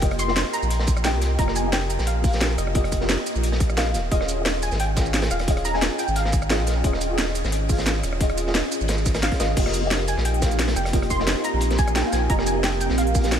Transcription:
Already playing: F1 F4 G4 D#5 F5 G5
0.00 A#3 F4 G4 D#5, kick, closed hi-hat
0.11 cross-stick, closed hi-hat
0.19 C6, closed hi-hat, shaker
0.27 A#3 F4 G4 D#5, snare
0.36 snare, closed hi-hat
0.53 A#5, closed hi-hat, shaker
0.62 A#1, shaker
0.70 closed hi-hat
0.79 snare
0.87 kick, closed hi-hat, shaker
0.97 cross-stick, shaker
1.03 A#3 F4 G4 D#5 G5, snare, closed hi-hat
1.14 C2
1.22 snare, closed hi-hat, shaker
1.37 F1 A#3 F4 G4 D#5 A#5, kick, closed hi-hat
1.48 cross-stick, snare
1.56 G#5, closed hi-hat, shaker
1.62 A#3 F4 G4
1.68 D#5
1.72 G5, snare, closed hi-hat
1.90 closed hi-hat, shaker
1.99 A#1, snare, shaker
2.07 F5, closed hi-hat
2.21 A#3 F4 G4, kick, closed hi-hat, open hi-hat, shaker
2.27 F5
2.33 snare, shaker
2.41 snare, closed hi-hat
2.58 F1 D#5, cross-stick, closed hi-hat, shaker
2.67 cross-stick
2.74 A#3 F4 G4 D#5, kick, closed hi-hat
2.84 cross-stick, closed hi-hat
2.92 kick, closed hi-hat, shaker
3.00 A#3 F4 G4 D#5, snare
3.09 snare, closed hi-hat
3.26 closed hi-hat, shaker
3.35 A#1, shaker
3.43 closed hi-hat
3.52 snare
3.60 kick, closed hi-hat, shaker
3.70 cross-stick, shaker
3.76 A#3 F4 G4 D#5 F5, snare, closed hi-hat
3.94 D#1, snare, closed hi-hat, shaker
4.10 D#1 C#4 F4 G#4 D#5, kick, closed hi-hat
4.21 cross-stick, snare
4.29 closed hi-hat, shaker
4.35 C#4 F4 G#4
4.41 D#5
4.45 snare, closed hi-hat
4.62 G#5, closed hi-hat, shaker
4.72 G#1, snare, shaker
4.80 G5, closed hi-hat
4.94 C#4 F4 G#4, kick, snare, closed hi-hat, shaker
5.00 F5
5.06 shaker
5.13 snare, closed hi-hat
5.22 snare, closed hi-hat
5.31 D#1 F5, cross-stick, closed hi-hat, shaker
5.39 cross-stick, snare, closed hi-hat
5.46 C#4 F4 G#4 D#5, kick, closed hi-hat
5.57 cross-stick, closed hi-hat
5.65 A#5, closed hi-hat, shaker
5.73 C#4 F4 G#4 D#5 G#5, snare
5.82 snare, closed hi-hat
5.99 G5, closed hi-hat, shaker
6.08 G#1, shaker
6.16 F5, closed hi-hat
6.25 snare
6.32 kick, closed hi-hat, shaker
6.42 cross-stick, shaker
6.49 C#4 F4 G#4 D#5, snare, closed hi-hat
6.59 A#1
6.67 snare, closed hi-hat, shaker
6.83 D#1 C#4 F4 G#4 D#5, kick, closed hi-hat
6.93 cross-stick, snare
7.01 closed hi-hat, shaker
7.07 C#4 F4 G#4
7.13 D#5
7.18 snare, closed hi-hat
7.35 closed hi-hat, shaker
7.44 G#1, snare, shaker
7.52 closed hi-hat
7.67 C#4 F4 G#4, kick, closed hi-hat, open hi-hat, shaker
7.72 F5
7.78 snare, shaker
7.86 snare, closed hi-hat
8.04 D#1, cross-stick, closed hi-hat, shaker
8.13 cross-stick
8.19 C#4 F4 G#4 D#5, kick, closed hi-hat
8.29 cross-stick, closed hi-hat
8.38 closed hi-hat, shaker
8.45 C#4 F4 G#4 D#5, snare
8.54 snare, closed hi-hat
8.72 closed hi-hat, shaker
8.81 G#1, shaker
8.88 snare, closed hi-hat
8.98 shaker
9.05 kick, snare, closed hi-hat, shaker
9.14 cross-stick, snare, closed hi-hat, shaker
9.23 F5, snare, closed hi-hat
9.31 C#4 F4 G#4 F5, kick, snare, closed hi-hat
9.40 G#1 D#5, snare, closed hi-hat, shaker
9.55 F1 A#3 C4 D#4 F4 G4 D#5, kick, closed hi-hat, crash
9.66 cross-stick, snare
9.73 closed hi-hat, shaker
9.80 A#3 F4 G4
9.86 D#5
9.91 snare, closed hi-hat
10.08 G#5, closed hi-hat, shaker
10.17 A#1, snare
10.25 G5, closed hi-hat
10.34 closed hi-hat
10.39 A#3 F4 G4, kick, snare, closed hi-hat, shaker
10.45 F5
10.51 closed hi-hat, shaker
10.59 snare, closed hi-hat
10.68 snare, closed hi-hat
10.76 F1 G5, cross-stick, closed hi-hat, shaker
10.85 cross-stick, snare, closed hi-hat
10.92 A#3 F4 G4 D#5, kick, closed hi-hat
11.02 cross-stick, closed hi-hat
11.10 C6, kick, closed hi-hat, shaker
11.18 A#3 F4 G4 D#5, snare
11.27 snare, closed hi-hat
11.44 A#5, closed hi-hat, shaker
11.53 A#1
11.61 closed hi-hat
11.70 snare, closed hi-hat
11.79 G#5, kick, closed hi-hat, shaker
11.88 cross-stick, closed hi-hat, shaker
11.96 G5, snare, closed hi-hat
12.03 A#3 F4 G4 F5
12.13 A#1 G#5, snare, closed hi-hat, shaker
12.28 F1 A#3 F4 G4 D#5 A#5, kick, closed hi-hat
12.39 cross-stick, snare
12.47 G#5, closed hi-hat, shaker
12.53 A#3 F4 G4
12.59 D#5
12.63 G5, snare, closed hi-hat
12.80 G5, closed hi-hat, shaker
12.90 A#1, snare
12.98 F5, closed hi-hat
13.07 closed hi-hat
13.12 A#3 F4 G4, kick, closed hi-hat, open hi-hat, shaker
13.18 F5
13.24 snare, closed hi-hat, shaker
13.32 snare, closed hi-hat

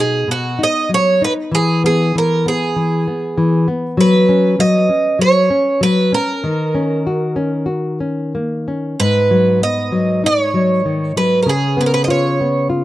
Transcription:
Already playing: B2 D#4
0.00 G#4
0.28 B2 F#4
0.59 D#4
0.63 D#5
0.89 F#3
0.94 C#5
1.22 D#4 B4
1.52 E3 G#4
1.84 B3 G#4
2.15 E3 A#4
2.46 B3 G#4
2.76 E3
3.08 B3
3.38 E3
3.68 B3
3.97 F#3 B4
4.29 C#4
4.59 F#3 D#5
4.89 C#4
5.19 F#3 C#5
5.50 C#4
5.81 F#3 B4
6.12 C#4 A#4
6.44 D#3
6.75 C#4
7.07 F#4
7.36 C#4
7.66 F#4
8.00 C#4
8.35 A#3
8.68 C#4
9.00 G#2 B4
9.31 F#3
9.62 B3 D#5
9.92 F#3
10.24 D#4 C#5
10.54 F#3
10.85 D#3
11.16 F#3 B4
11.43 C#3 A#4
11.49 G#4
11.77 B3 B4
11.86 A#4
11.94 B4
12.04 F4 D#5
12.10 C#5
12.41 B3
12.70 F4

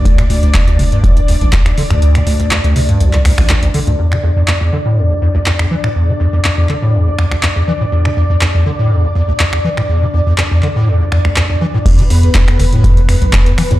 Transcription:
Already playing: D2 D5
0.05 D2, kick, closed hi-hat
0.18 D3, finger snap, closed hi-hat
0.30 D2, open hi-hat
0.43 D2, closed hi-hat
0.54 D2, kick, clap, closed hi-hat
0.67 D2, closed hi-hat
0.79 C3, kick, open hi-hat
0.92 G2, closed hi-hat
1.04 D1 D2, kick, closed hi-hat
1.17 C2, closed hi-hat
1.28 D2, open hi-hat
1.41 A1 C2, closed hi-hat
1.53 D2, kick, clap, closed hi-hat
1.66 D2, finger snap, closed hi-hat
1.78 D3, open hi-hat
1.90 D2 G2, finger snap, closed hi-hat
2.02 D2, closed hi-hat
2.15 D3, finger snap, closed hi-hat
2.27 D2, open hi-hat
2.40 D2, closed hi-hat
2.51 D2, clap, closed hi-hat
2.64 D2, closed hi-hat
2.76 C3, open hi-hat
2.89 G2, closed hi-hat
3.00 C2 D2, closed hi-hat
3.13 C2, clap, closed hi-hat
3.25 D2, finger snap, open hi-hat
3.38 A1 C2, finger snap, open hi-hat
3.49 D2, clap, closed hi-hat
3.63 D2, closed hi-hat
3.74 D3, open hi-hat
3.87 D2 G2, closed hi-hat
3.99 E2 D5
4.12 E3, finger snap
4.23 E2
4.36 E2
4.48 E2, clap
4.61 E2
4.73 D3
4.86 A2
4.97 E2
5.10 D2
5.22 E2
5.35 D2
5.46 E2, clap
5.59 E2, finger snap
5.71 E3
5.84 A2, finger snap
5.96 E2
6.08 E3
6.20 E2
6.33 E2
6.44 E2, clap
6.58 E2
6.69 D3, clap
6.82 A2
6.94 E2
7.07 D2
7.19 E2, finger snap
7.31 D2, finger snap
7.43 E2, clap
7.56 E2
7.68 E3
7.81 A2
7.92 E2
8.05 E3, finger snap
8.17 E2
8.30 E2
8.41 E2, clap
8.54 E2
8.66 D3
8.79 A2
8.91 E2
9.04 D2
9.15 E2
9.28 D2
9.39 E2, clap
9.53 E2, finger snap
9.64 E3
9.77 A2, finger snap
9.89 E2
10.02 E3
10.14 E2
10.27 E2
10.38 E2, clap
10.51 E2
10.62 D3, clap
10.76 A2
10.87 E2
11.00 D2
11.12 E2, finger snap
11.25 D2, finger snap
11.36 E2, clap
11.50 E2
11.61 E3
11.74 A2
11.86 E2 B4, kick, closed hi-hat, crash
11.99 E3, closed hi-hat
12.10 E2, open hi-hat
12.23 E2, closed hi-hat
12.35 E2, kick, clap, closed hi-hat
12.48 E2, finger snap, closed hi-hat
12.59 D3, kick, open hi-hat
12.72 A2, closed hi-hat
12.84 E1 E2, kick, closed hi-hat
12.97 D2, closed hi-hat
13.09 E2, finger snap, open hi-hat
13.22 B1 D2, closed hi-hat
13.33 E2, kick, clap, closed hi-hat
13.46 E2, closed hi-hat
13.58 E3, finger snap, open hi-hat
13.71 E2 A2, closed hi-hat

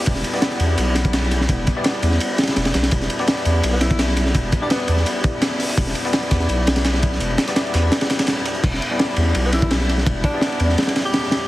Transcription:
Already playing: B3 E4 G4 D5
0.06 E1 G3 B3 D4 E4, kick, closed hi-hat, ride
0.16 snare, closed hi-hat
0.24 closed hi-hat, ride
0.34 B3 E4 G4 D5, snare
0.42 snare, closed hi-hat, ride
0.51 snare, closed hi-hat
0.60 E2, closed hi-hat, ride
0.78 B1, closed hi-hat, ride
0.95 snare, closed hi-hat, ride
1.05 G3 B3 D4 E4, kick, closed hi-hat
1.13 snare, closed hi-hat, ride
1.22 snare
1.31 snare, closed hi-hat, ride
1.41 snare
1.49 E1 G3 B3 D4 E4, kick, closed hi-hat, ride
1.67 kick, closed hi-hat, ride
1.77 B3 E4 G4 D5
1.84 snare, closed hi-hat, ride
1.94 ride
2.03 E2, closed hi-hat, ride
2.11 snare
2.20 closed hi-hat, ride
2.38 G3 B3 D4 E4, snare, closed hi-hat, ride
2.43 snare, ride
2.47 snare, closed hi-hat, ride
2.56 E1, snare, closed hi-hat, ride
2.65 snare, ride
2.74 B1, snare, closed hi-hat, ride
2.83 snare, closed hi-hat, ride
2.91 E1 G3 B3 D4 E4, kick, closed hi-hat, ride
3.01 snare, closed hi-hat
3.10 closed hi-hat, ride
3.19 B3 E4 G4 D5, snare
3.28 snare, closed hi-hat, ride
3.37 snare, closed hi-hat
3.45 E2, closed hi-hat, ride
3.63 B1, closed hi-hat, ride
3.73 B3
3.81 E4, snare, closed hi-hat, ride
3.91 G3 B3 D4 E4, kick, closed hi-hat
3.99 snare, closed hi-hat, ride
4.08 snare
4.17 snare, closed hi-hat, ride
4.26 snare
4.35 E1 G3 B3 D4 E4, kick, closed hi-hat, ride
4.52 kick, closed hi-hat, ride
4.62 B3 D4 E4 G4 D5
4.70 B3, snare, closed hi-hat, ride
4.80 ride
4.88 E2, closed hi-hat, ride
4.97 snare
5.06 closed hi-hat, ride
5.24 kick, closed hi-hat, ride
5.33 G3 B3 D4 E4
5.42 snare, closed hi-hat, ride
5.51 snare
5.59 snare, closed hi-hat, open hi-hat
5.69 snare
5.78 E1 G3 B3 D4 E4, kick, closed hi-hat, ride
5.87 snare, closed hi-hat
5.95 closed hi-hat, ride
6.05 B3 E4 G4 D5, snare
6.13 snare, closed hi-hat, ride
6.23 snare, closed hi-hat
6.31 E2, kick, snare, closed hi-hat, ride
6.40 snare, closed hi-hat
6.49 B1, closed hi-hat, ride
6.67 snare, closed hi-hat, ride
6.76 G3 B3 D4 E4, snare, closed hi-hat, ride
6.85 snare, closed hi-hat, ride
6.94 snare
7.03 kick, closed hi-hat, ride
7.12 snare
7.20 E1 G3 B3 D4 E4, closed hi-hat, ride
7.38 snare, closed hi-hat, ride
7.48 B3 E4 G4 D5, snare, closed hi-hat
7.56 snare, closed hi-hat, ride
7.67 ride
7.74 E2, snare, closed hi-hat, ride
7.92 snare, closed hi-hat, ride
8.01 snare, ride
8.10 snare, closed hi-hat, ride
8.19 G3 B3 D4 E4, snare, closed hi-hat, ride
8.27 snare, closed hi-hat, ride
8.37 snare
8.46 snare, closed hi-hat, ride
8.55 closed hi-hat
8.64 E1 G3 B3 D4 E4, kick, crash, ride
8.74 snare
8.82 ride
8.91 B3 E4 G4 D5
8.99 snare, ride
9.09 snare
9.16 E2, ride
9.35 B1, ride
9.45 B3
9.53 E4, snare, ride
9.62 G3 B3 D4 E4, kick
9.71 snare, ride
9.81 snare
9.89 snare, ride
9.98 snare
10.06 E1 G3 B3 D4 E4, kick, ride
10.24 D4, kick, ride
10.34 B3 E4 G4 D5
10.41 snare, ride
10.52 ride
10.60 E2, ride
10.69 snare
10.78 snare, ride
10.82 snare, ride
10.87 snare, ride
10.96 snare, ride
11.05 G3 B3 D4 E4 G4
11.14 snare, ride
11.23 snare
11.31 snare, ride

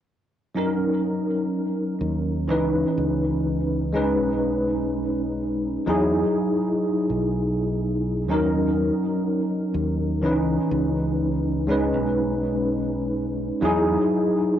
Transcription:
0.54 F#3 C#4 D#4 A#4
2.01 D#2
2.48 C#2 E3 C#4 D#4 B4
2.98 C#2
3.93 G#3 C#4 D#4 B4
4.20 B1
5.86 E2 F#3 D#4 E4 G#4
7.10 B1
8.29 D#2 F#3 C#4 D#4 A#4
9.75 D#2
10.22 C#2 E3 C#4 D#4 B4
10.71 C#2
11.67 G#3 C#4 D#4 B4
11.94 B1
13.61 E2 F#3 D#4 E4 G#4

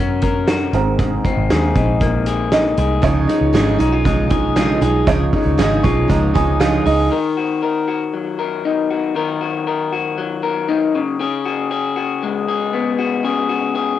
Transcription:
Already playing: F#2 F#3 C#4 F#4 A#4
0.22 A#4, kick, closed hi-hat
0.48 F#4, snare, closed hi-hat
0.73 G#1 G#2 C4 G#4 A#4, closed hi-hat
0.99 G#2, kick, closed hi-hat
1.25 C4, kick, closed hi-hat
1.37 G#1
1.50 D#2 G#4, snare, closed hi-hat
1.76 A#1 D#4, kick, closed hi-hat
2.01 A#3, kick, closed hi-hat
2.26 G#4, closed hi-hat
2.52 D#4 D#5, snare, closed hi-hat
2.77 C2 G#4, closed hi-hat
3.02 C#2 C#3 F3 G#3 D#4 F4 C#5, kick, closed hi-hat
3.27 F3 G#3 D#4, closed hi-hat
3.41 C#2
3.53 G#1 C#3 F3 G#3 D#4 G#4, snare, closed hi-hat
3.78 B1 F3 G#3 D#4, closed hi-hat
3.92 F4
4.04 C#3 F3 G#3 D#4, kick, closed hi-hat
4.29 F3 G#3 D#4 G#4, kick, closed hi-hat
4.56 C#3 F3 G#3 D#4 F4, snare, closed hi-hat
4.81 B1 F3 G#3 D#4 G#4, closed hi-hat
5.07 C#2 C#3 F3 G#3 D#4 F4 C#5, kick, closed hi-hat
5.32 F3 G#3 D#4, kick, closed hi-hat
5.46 C#2
5.58 G#1 C#3 F3 G#3 D#4 G#4, snare, closed hi-hat
5.83 B1 F3 G#3 D#4 F4 C#6, kick, closed hi-hat
6.08 C#2 C#3 F3 G#3 D#4 A#5, kick, closed hi-hat
6.34 C#2 F3 G#3 D#4 G#4 G#5, kick, closed hi-hat
6.60 C#3 F3 G#3 D#4 F4 F5, snare, closed hi-hat
6.85 C#2 F3 G#3 D#4 G#4 D#5, open hi-hat
7.11 D#3 A#4
7.37 F#4
7.62 A#4
7.88 F#4
8.14 F#3
8.39 A#4
8.65 D#4
8.90 F#4
9.15 D#3 A#4
9.41 F#4
9.67 A#4
9.92 F#4
10.18 F#3
10.43 A#4
10.69 D#4
10.95 C#3
11.20 C#3 G#4
11.46 F#4
11.71 G#4
11.96 F#4
12.23 G#3
12.48 G#4
12.73 B3
12.99 F#4
13.24 C#3 G#4
13.49 F#4
13.75 G#4

